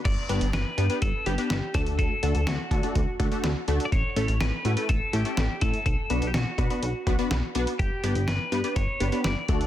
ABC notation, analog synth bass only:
X:1
M:4/4
L:1/16
Q:1/4=124
K:Glyd
V:1 name="Analog synth bass" clef=bass
G,,, z G,,, G,,, G,,, z G,, z G,,, z G,,, z G,,, z D,,2- | D,, z D,, D,, D,, z D, z D,, z D,, z D,, z D,, z | A,,, z A,,, A,,, A,,, z A,, z A,,, z A,,, z A,,, z A,,, z | B,,, z B,,, B,,, B,,, z B,, z B,,, z B,,, z B,,, z B,,, z |
G,,, z G,,, G,,, G,,, z G,, z G,,, z G,,, z G,,, z D,,2 |]